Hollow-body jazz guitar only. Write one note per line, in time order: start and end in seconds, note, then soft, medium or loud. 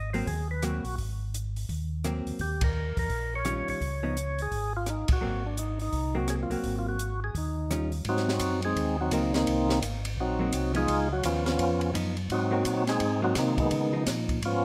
0.14 0.26 F#3 medium
0.14 0.26 A#3 medium
0.14 0.27 C4 medium
0.63 0.83 F#3 soft
0.63 0.83 A#3 medium
0.63 0.83 C4 soft
2.05 2.40 F#3 soft
2.05 2.40 A#3 medium
2.05 2.40 C4 medium
3.45 3.81 D#3 soft
3.45 3.81 G3 soft
3.45 3.81 C#4 medium
3.45 3.81 F4 medium
4.03 4.15 F3 medium
4.03 4.15 B3 medium
4.03 4.15 D#4 medium
5.21 5.41 F#3 soft
5.21 5.42 A#3 medium
5.21 5.42 C4 medium
6.15 6.48 F#3 medium
6.15 6.48 A#3 medium
6.15 6.48 C4 medium
6.50 6.96 F#3 soft
6.50 6.96 A#3 medium
6.50 6.97 C4 medium
7.71 7.90 D#3 soft
7.71 7.90 G3 soft
7.71 7.91 C#4 soft
7.71 7.91 F4 soft
9.12 9.32 F#3 medium
9.12 9.32 A#3 medium
9.12 9.32 C4 medium
10.39 10.51 F#3 medium
10.39 10.52 A#3 medium
10.39 10.52 C4 medium
10.74 10.86 F3 medium
10.74 10.87 B3 medium
10.74 10.87 D#4 medium
11.94 12.14 F3 medium
11.94 12.14 B3 medium
11.94 12.15 D#4 medium
12.51 12.63 F#3 medium
12.51 12.64 A#3 medium
12.51 12.64 C4 medium
13.22 13.68 F#3 medium
13.22 13.68 A#3 medium
13.22 13.69 C4 medium
13.93 14.39 F3 medium
13.93 14.40 D#4 medium